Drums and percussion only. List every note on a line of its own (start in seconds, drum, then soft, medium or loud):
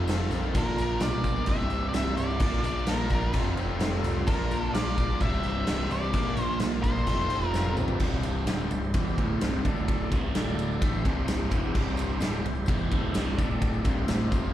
0.07 snare loud
0.07 tambourine loud
0.07 crash medium
0.19 tambourine soft
0.31 tambourine medium
0.31 crash medium
0.43 tambourine soft
0.55 kick loud
0.55 tambourine medium
0.55 crash medium
0.78 tambourine medium
0.78 crash medium
0.89 tambourine soft
1.00 snare loud
1.00 tambourine medium
1.00 crash medium
1.13 tambourine soft
1.24 kick medium
1.24 tambourine medium
1.24 crash medium
1.36 tambourine soft
1.46 kick medium
1.46 crash medium
1.59 tambourine soft
1.70 tambourine soft
1.70 crash medium
1.94 snare loud
1.94 tambourine loud
1.94 crash medium
2.17 tambourine medium
2.17 crash medium
2.30 tambourine soft
2.40 kick loud
2.40 tambourine medium
2.40 crash medium
2.64 tambourine medium
2.64 crash medium
2.86 snare loud
2.86 tambourine medium
2.86 crash medium
3.09 kick medium
3.09 tambourine medium
3.09 crash medium
3.22 tambourine soft
3.33 kick medium
3.33 crash medium
3.45 tambourine soft
3.57 tambourine soft
3.57 crash medium
3.80 snare loud
3.80 tambourine medium
3.80 crash medium
4.04 tambourine medium
4.04 crash medium
4.15 tambourine soft
4.27 kick loud
4.27 tambourine medium
4.27 crash medium
4.51 tambourine medium
4.51 crash medium
4.63 tambourine soft
4.74 snare loud
4.74 tambourine medium
4.74 crash medium
4.86 tambourine soft
4.98 kick medium
4.98 tambourine medium
4.98 crash medium
5.10 tambourine soft
5.20 kick medium
5.20 crash medium
5.33 tambourine soft
5.43 tambourine soft
5.43 crash medium
5.67 snare loud
5.67 tambourine medium
5.67 crash medium
5.91 tambourine medium
5.91 crash medium
6.03 tambourine soft
6.13 kick loud
6.13 tambourine medium
6.13 crash medium
6.27 tambourine soft
6.37 tambourine medium
6.37 crash medium
6.50 tambourine soft
6.60 snare loud
6.60 tambourine medium
6.60 crash medium
6.84 kick medium
6.84 tambourine medium
6.84 crash medium
6.97 tambourine soft
7.07 kick medium
7.07 tambourine soft
7.07 crash medium
7.20 tambourine soft
7.30 tambourine soft
7.30 crash medium
7.43 tambourine soft
7.54 snare medium
7.54 tambourine medium
7.65 high tom medium
7.77 mid tom loud
7.77 tambourine medium
7.88 floor tom loud
7.88 tambourine soft
8.00 kick loud
8.00 crash loud
8.00 tambourine soft
8.23 ride medium
8.23 tambourine medium
8.36 tambourine soft
8.47 snare loud
8.47 ride loud
8.47 tambourine medium
8.60 tambourine soft
8.71 ride medium
8.71 tambourine medium
8.83 tambourine soft
8.94 kick loud
8.94 ride medium
8.94 tambourine medium
9.07 tambourine soft
9.18 kick loud
9.18 ride medium
9.41 snare loud
9.41 ride medium
9.41 tambourine medium
9.65 kick loud
9.65 ride medium
9.65 tambourine medium
9.76 tambourine soft
9.88 kick loud
9.88 ride medium
9.88 tambourine soft
10.12 kick loud
10.12 ride medium
10.12 tambourine medium
10.35 snare loud
10.35 ride loud
10.35 tambourine medium
10.47 tambourine soft
10.59 ride medium
10.59 tambourine medium
10.71 tambourine soft
10.82 kick loud
10.82 ride loud
10.82 tambourine medium
10.94 tambourine soft
11.05 kick loud
11.05 ride medium
11.28 snare loud
11.28 ride loud
11.28 tambourine medium
11.51 kick loud
11.51 ride medium
11.51 tambourine medium
11.63 tambourine soft
11.75 kick loud
11.75 crash loud
11.75 tambourine soft
11.97 ride medium
11.97 tambourine medium
12.20 snare loud
12.20 ride loud
12.20 tambourine loud
12.32 tambourine soft
12.45 ride medium
12.55 tambourine soft
12.66 kick loud
12.66 ride medium
12.66 tambourine medium
12.78 tambourine soft
12.92 kick loud
12.92 ride medium
13.14 snare loud
13.14 ride loud
13.14 tambourine loud
13.38 kick loud
13.38 ride medium
13.38 tambourine medium
13.51 tambourine soft
13.62 kick loud
13.62 ride medium
13.62 tambourine soft
13.73 tambourine soft
13.85 kick loud
13.85 ride medium
13.85 tambourine medium
14.08 snare loud
14.08 ride medium
14.08 tambourine loud
14.32 kick loud
14.32 ride medium
14.32 tambourine medium
14.44 tambourine soft